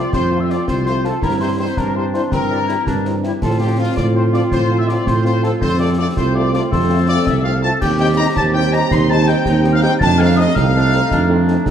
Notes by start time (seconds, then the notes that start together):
Already playing: F3 C4 F4 D5
0.13 F2 C5 C6, concert bass drum, snare
0.31 A3 C4 F4
0.40 E5 E6
0.49 A3 C4 F4 D5 D6, snare
0.67 C2 C5 C6, concert bass drum, snare
0.85 A3 C4 F4 C5 C6, snare
1.04 A3 C4 F4 A4 A5, snare
1.22 G2 E3 C4 E4 A#4 A#5, concert bass drum, snare
1.40 G3 C4 E4 C5 C6
1.59 G3 C4 E4 C5 C6
1.77 G2 D4 A#4 A#5, concert bass drum, snare
1.95 G3 C4 E4 C5 C6
2.13 G3 C4 E4 C5 C6, snare
2.31 G2 C4 A#4 A#5, concert bass drum, snare
2.50 G3 C4 D4 E4
2.67 G3 C4 E4, snare
2.86 G2 D4, concert bass drum, snare
3.05 G3 C4 E4, snare
3.23 G3 C4 E4, snare
3.41 A2 F3 C4 F4 A4 A5, concert bass drum, snare, crash
3.60 F3 C4 F4 G4 G5
3.78 F3 C4 F4 F5
3.96 A2 F4 D5 D6, concert bass drum, snare
4.14 F3 C4 F4 C5 C6
4.32 F3 C4 F4 D5 D6, snare
4.51 A2 C5 C6, concert bass drum, snare
4.70 F3 C4 F4
4.78 E5 E6
4.88 F3 C4 F4 D5 D6, snare
5.06 A2 C5 C6, concert bass drum, snare
5.25 F3 C4 F4 C5 C6, snare
5.43 F3 C4 F4 A4 A5, snare
5.61 F2 A3 C4 A4 C5 C6, concert bass drum, snare
5.79 A3 C4 F4 D5 D6
5.98 A3 C4 F4 D5 D6
6.16 C2 F4 C5 C6, concert bass drum, snare
6.35 A3 C4 F4 D5 D6
6.53 A3 C4 F4 D5 D6, snare
6.71 F2 A4 C5 C6, concert bass drum, snare
6.90 A3 C4 F4
7.08 A3 C4 F4 D5 D6
7.26 C2 E5 E6, concert bass drum, snare
7.44 A3 C4 F4 F5 F6
7.62 A3 C4 F4 A5 A6
7.81 D#2 G3 C4 G4 G5 G6, concert bass drum, snare, crash
7.99 C4 D#4 G4 G5 G6
8.17 C4 D#4 G4 A#5 A#6
8.35 D#2 A5 A6, concert bass drum, snare
8.54 C4 D#4 G4 G5 G6
8.72 C4 D#4 G4 A#5 A#6, snare
8.91 D#2 D#4 C6 C7, concert bass drum, snare
9.09 C4 D#4 G4 A5 A6
9.27 C4 D#4 G4 G5 G6, snare
9.45 D#2 D#4, concert bass drum, snare
9.64 C4 D#4 G4, snare
9.73 F5 F6
9.82 C4 D#4 G4 G5 G6, snare
9.99 F2 A3 D4 D#4 A5 A6, concert bass drum, snare
10.18 C4 D#4 A4 F5 F6
10.36 C4 D#4 A4 D#5 D#6
10.55 C2 C4 F5 F6, concert bass drum, snare
10.74 C4 D4 D#4 A4
10.93 C4 D#4 A4, snare
11.11 F2 D4, concert bass drum, snare
11.29 C4 D#4 A4
11.48 C4 D#4 A4, snare
11.66 C2 C4, concert bass drum, snare